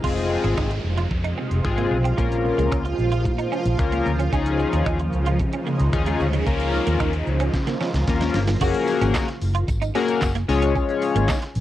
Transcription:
0.04 F1 C3 F3 G#3 C4 F4 G#4, kick, crash, downlifter
0.17 closed hi-hat
0.30 muted clean electric guitar stroke
0.44 G#1 C4, closed hi-hat
0.57 D#4, finger snap, kick
0.71 muted clean electric guitar stroke, closed hi-hat
0.84 F1
0.98 F4, closed hi-hat
1.11 F2, muted clean electric guitar stroke, kick
1.24 D#4, closed hi-hat
1.38 C4
1.51 F1, closed hi-hat
1.64 G#1 G#3 C4 F4 G#4, finger snap, kick
1.78 A#3, closed hi-hat
1.91 B1, muted clean electric guitar stroke
2.04 C4, closed hi-hat
2.18 A#1 C#3 A#3 C#4 F4 A#4, kick, shaker
2.32 closed hi-hat, shaker
2.45 muted clean electric guitar stroke, shaker
2.58 C#2 G#3, closed hi-hat, shaker
2.72 C#2 C#4, finger snap, kick, shaker
2.85 muted clean electric guitar stroke, closed hi-hat, shaker
2.99 A#1, shaker
3.12 F4, closed hi-hat, shaker
3.25 A#2, muted clean electric guitar stroke, kick, shaker
3.38 D#4, closed hi-hat, shaker
3.52 C#4, shaker
3.66 A#1, closed hi-hat, shaker
3.79 C#2 A#3 C#4 F4 A#4, finger snap, kick, shaker
3.92 A#3, closed hi-hat, shaker
4.06 D2, muted clean electric guitar stroke, shaker
4.19 C#4, closed hi-hat, shaker
4.32 C#2 G#3 C#4 D#4 F4 G#4, kick, noise sweep, shaker
4.46 closed hi-hat, shaker
4.59 muted clean electric guitar stroke, shaker
4.73 D#2 C#4, closed hi-hat, shaker
4.86 D#4, finger snap, kick, shaker
4.99 muted clean electric guitar stroke, closed hi-hat, shaker
5.13 C#2, shaker
5.26 F4, closed hi-hat, shaker
5.40 C#3, muted clean electric guitar stroke, kick, shaker
5.53 C#4, closed hi-hat, shaker
5.67 A#3, shaker
5.80 C#2, closed hi-hat, shaker
5.93 D#2 C#4 D#4 F4 G#4, finger snap, kick, shaker
6.06 G#3, closed hi-hat, shaker
6.20 D2, muted clean electric guitar stroke, shaker
6.33 G#3, closed hi-hat, shaker
6.46 C#2 F3 A#3 C#4 F4 A#4, kick, shaker
6.60 closed hi-hat, shaker
6.73 muted clean electric guitar stroke, shaker
6.87 D#2 A#3, closed hi-hat, shaker
7.00 D#2 D#4, finger snap, kick, shaker
7.13 muted clean electric guitar stroke, closed hi-hat, shaker
7.27 C#2, shaker
7.40 C#4, finger snap, closed hi-hat, shaker
7.54 C#3, muted clean electric guitar stroke, kick, snare, shaker
7.67 A#3, snare, closed hi-hat, shaker
7.81 C#4, snare, shaker
7.94 C#2, snare, closed hi-hat, shaker
8.08 D#2 A#3 C#4 F4 A#4, kick, snare, shaker
8.21 G#3, snare, closed hi-hat, shaker
8.34 G1, muted clean electric guitar stroke, snare, shaker
8.48 A#3, snare, closed hi-hat, shaker
8.61 F#1 A#3 C#4 F#4 G#4 A#4, kick, crash, tambourine, shaker
8.74 closed hi-hat, shaker
8.88 muted clean electric guitar stroke, open hi-hat, tambourine, shaker
9.01 G#1 C#4, closed hi-hat, tambourine, shaker
9.14 D#4, kick, snare, clap, tambourine, shaker
9.28 muted clean electric guitar stroke, closed hi-hat, shaker
9.41 F#1, open hi-hat, tambourine, shaker
9.55 F4, closed hi-hat, shaker
9.68 G#1, muted clean electric guitar stroke, kick, tambourine, shaker
9.82 D#4, closed hi-hat, tambourine, shaker
9.95 A#3 C#4 F#4 G#4 A#4, open hi-hat, shaker
10.08 closed hi-hat, tambourine, shaker
10.21 F#1, kick, snare, clap, tambourine, shaker
10.35 A#3, closed hi-hat, shaker
10.48 C#2 G#3 C#4 F4 G#4 C#5, muted clean electric guitar stroke, open hi-hat, tambourine, shaker
10.62 C#4, closed hi-hat, tambourine, shaker
10.75 C#4, kick, tambourine, shaker
10.89 closed hi-hat, shaker
11.02 muted clean electric guitar stroke, open hi-hat, tambourine, shaker
11.15 G#1 A#3, closed hi-hat, tambourine, shaker
11.28 D#4, kick, snare, clap, tambourine, shaker
11.42 muted clean electric guitar stroke, closed hi-hat, shaker
11.55 A#1, open hi-hat, tambourine, shaker

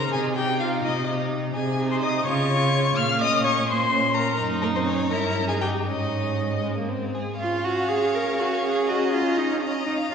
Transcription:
Already playing: D#4 A#4 A#5
0.12 C3 D#4 G#4 G#5
0.36 D#4 G4 G5
0.60 F4 F5
0.84 C3 D#4 D#5
1.10 D#4
1.55 C3 G#4 G#5
1.80 D#4
1.91 C5 C6
2.02 D#5 D#6
2.26 C#3 F4 C#5 C#6
2.50 F4
2.96 A#2 F5 F6
3.21 C#4 D#5 D#6
3.44 C#5 C#6
3.68 A#2 C5 C6
3.91 C#4
4.15 A#4 A#5
4.39 F#2 D#4
4.62 A#3 A#4
4.74 C4 C5
4.86 C#4 C#5
5.11 G2 E4 A#4 A#5
5.48 D#4 G#4 G#5
5.61 G4 G5
5.87 G#2 C#4 D#4 D#5
6.65 G#3
6.78 A#3
6.89 C4
7.15 G#4
7.40 C#4 F4 F5 C#6
7.64 F#4
7.89 G#4
8.14 A#4
8.39 F#4
8.64 G#4
8.88 F#4 D#5 A#5
9.13 F4
9.38 D#4
9.61 C#4 D#5 A#5
9.86 D#4
9.98 F5
10.10 F4

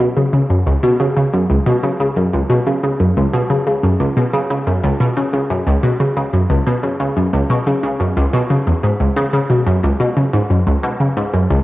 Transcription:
0.17 C#3
0.33 C#3
0.50 F#2
0.67 C#2
0.83 B2
1.00 C#3
1.17 C#3
1.33 F#2
1.50 C#2
1.67 B2
1.83 C#3
2.00 C#3
2.17 F#2
2.33 C#2
2.50 B2
2.67 C#3
2.83 C#3
3.00 F#2
3.17 C#2
3.33 B2
3.50 C#3
3.67 C#3
3.83 F#2
4.00 C#2
4.17 B2
4.33 C#3
4.50 C#3
4.67 F#2
4.83 C#2
5.00 B2
5.17 C#3
5.33 C#3
5.50 F#2
5.67 C#2
5.83 B2
6.00 C#3
6.17 C#3
6.33 F#2
6.50 C#2
6.67 B2
6.83 C#3
7.00 C#3
7.17 F#2
7.33 C#2
7.50 B2
7.67 C#3
7.83 C#3
8.00 F#2
8.17 C#2
8.33 B2
8.50 C#3
8.67 E2
8.83 G#2
9.00 C#2
9.16 C#3
9.33 C#3
9.50 B2
9.67 F#2
9.83 C#2
10.00 B2
10.17 C#3
10.33 G#2
10.50 F#2
10.67 C#2
10.84 B2
11.00 C#3
11.17 G#2
11.34 F#2
11.50 C#2

